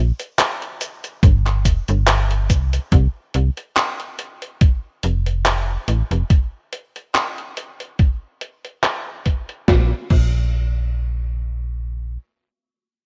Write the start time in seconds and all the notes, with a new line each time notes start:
Already playing: A#1
0.19 closed hi-hat, cabasa
0.39 clap, closed hi-hat, cabasa
0.62 closed hi-hat
0.81 closed hi-hat, cabasa
1.04 closed hi-hat, cabasa
1.23 G1, kick, closed hi-hat, cabasa
1.46 clap, closed hi-hat
1.65 F1, kick, closed hi-hat, cabasa
1.88 G1, closed hi-hat, cabasa
2.07 clap, closed hi-hat, cabasa
2.31 closed hi-hat
2.50 C2, kick, closed hi-hat, cabasa
2.73 closed hi-hat, cabasa
2.92 C2, kick, closed hi-hat
3.34 C2, closed hi-hat
3.57 closed hi-hat
3.77 clap, closed hi-hat
4.00 closed hi-hat
4.19 closed hi-hat
4.42 closed hi-hat
4.61 kick, closed hi-hat
5.03 F1, closed hi-hat
5.26 closed hi-hat
5.46 clap, closed hi-hat
5.88 A1, closed hi-hat
6.11 F1, closed hi-hat
6.30 kick, closed hi-hat
6.73 closed hi-hat
6.96 closed hi-hat
7.15 clap, closed hi-hat
7.38 closed hi-hat
7.57 closed hi-hat
7.80 closed hi-hat
7.99 kick, closed hi-hat
8.41 closed hi-hat
8.65 closed hi-hat
8.83 clap, closed hi-hat
9.26 kick, closed hi-hat
9.49 closed hi-hat
9.68 A#1, kick, snare
10.10 A#1, kick, crash